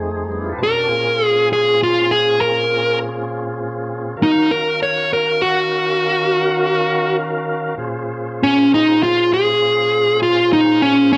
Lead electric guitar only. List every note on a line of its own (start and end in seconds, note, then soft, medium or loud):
0.63 1.24 A#4 loud
1.24 1.48 G#4 loud
1.53 1.79 G#4 medium
1.83 2.10 F4 medium
2.11 2.39 G#4 medium
2.41 2.98 A#4 medium
4.23 4.50 D#4 medium
4.51 4.79 A#4 medium
4.83 5.10 C#5 medium
5.13 5.40 A#4 medium
5.42 7.16 F#4 medium
8.43 8.70 C#4 medium
8.74 9.01 D#4 medium
9.03 9.30 F4 medium
9.34 10.19 G#4 medium
10.23 10.50 F4 medium
10.53 10.80 D#4 medium
10.82 11.10 C#4 medium
11.13 11.17 C#4 medium